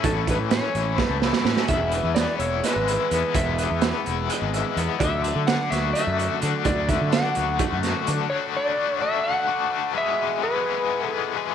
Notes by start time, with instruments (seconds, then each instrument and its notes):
Already playing: overdriven electric guitar E3 A3 C#4 E4, tonewheel organ E3 A3 C#4 A4 C#5
0.04 fingered electric bass A1, overdriven electric guitar A2, electric slide guitar A4, kick, closed hi-hat
0.27 overdriven electric guitar E3, electric slide guitar B4, kick, closed hi-hat
0.39 fingered electric bass A2
0.51 overdriven electric guitar C#4, electric slide guitar C#5, snare, closed hi-hat
0.75 fingered electric bass A1, overdriven electric guitar E4, closed hi-hat
0.98 overdriven electric guitar A3, electric slide guitar B4, kick, snare
1.09 fingered electric bass C#2
1.22 overdriven electric guitar E4, snare
1.33 snare
1.45 fingered electric bass A2, overdriven electric guitar C#4, snare
1.57 snare
1.68 fingered electric bass E1, overdriven electric guitar E2, tonewheel organ G#3 B3 G#4 B4, electric slide guitar E5, kick, closed hi-hat
1.92 overdriven electric guitar E3, closed hi-hat
2.03 fingered electric bass E2
2.15 overdriven electric guitar B3, electric slide guitar D5, snare, closed hi-hat
2.39 fingered electric bass E1, overdriven electric guitar E4, electric slide guitar C#5, closed hi-hat
2.64 overdriven electric guitar G#3, electric slide guitar B4, snare, closed hi-hat
2.76 fingered electric bass G#1
2.88 overdriven electric guitar E4, closed hi-hat
3.11 fingered electric bass E2, overdriven electric guitar B3, closed hi-hat
3.35 fingered electric bass E1, overdriven electric guitar E2, electric slide guitar E5, kick, closed hi-hat
3.58 overdriven electric guitar E3, closed hi-hat
3.70 fingered electric bass E2
3.81 overdriven electric guitar B3, snare, closed hi-hat
4.06 fingered electric bass E1, overdriven electric guitar E4, closed hi-hat
4.29 overdriven electric guitar G#3, closed hi-hat
4.42 fingered electric bass G#1
4.54 overdriven electric guitar E4, closed hi-hat
4.76 fingered electric bass E2, overdriven electric guitar B3, closed hi-hat
5.00 fingered electric bass D2, overdriven electric guitar D3, tonewheel organ D3 F#3 A3 F#4 A4, electric slide guitar E5, kick, closed hi-hat
5.24 overdriven electric guitar D3, closed hi-hat
5.35 fingered electric bass D3
5.47 overdriven electric guitar D4, electric slide guitar F#5, snare, closed hi-hat
5.70 fingered electric bass D2, overdriven electric guitar F#4, electric slide guitar E5, snare, closed hi-hat
5.93 overdriven electric guitar A3, electric slide guitar E5, closed hi-hat
6.07 fingered electric bass F#2
6.18 overdriven electric guitar F#4, closed hi-hat
6.41 fingered electric bass D3, overdriven electric guitar D4, closed hi-hat
6.64 fingered electric bass D2, overdriven electric guitar D3, electric slide guitar D5, kick, closed hi-hat
6.88 overdriven electric guitar D3, electric slide guitar E5, kick, closed hi-hat
7.01 fingered electric bass D3
7.11 overdriven electric guitar D4, electric slide guitar F#5, snare, closed hi-hat
7.35 fingered electric bass D2, overdriven electric guitar F#4, closed hi-hat
7.59 overdriven electric guitar A3, kick, closed hi-hat
7.72 fingered electric bass F#2
7.83 overdriven electric guitar F#4, snare, closed hi-hat
8.07 fingered electric bass D3, overdriven electric guitar D4, closed hi-hat
8.30 overdriven electric guitar D3 A3 D4 F#4, tonewheel organ A4 D5 F#5 B5, electric slide guitar C#5
8.57 electric slide guitar D5
8.77 overdriven electric guitar D3 A3 D4 F#4
9.00 overdriven electric guitar A3 D4 F#4, electric slide guitar E5
9.24 electric slide guitar F#5
9.47 overdriven electric guitar A3 D4 F#4
9.71 overdriven electric guitar D3 A3 D4 F#4
9.93 overdriven electric guitar E2 B2 E3 G#3 B3 G#4, tonewheel organ G#4 E5
9.98 electric slide guitar E5
10.42 overdriven electric guitar E3 G#3 B3 G#4, electric slide guitar B4
10.65 overdriven electric guitar E3 G#3 B3 G#4
11.07 electric slide guitar A4
11.12 overdriven electric guitar E3 G#3 B3 G#4
11.35 overdriven electric guitar E2 B2 E3 G#3 B3 G#4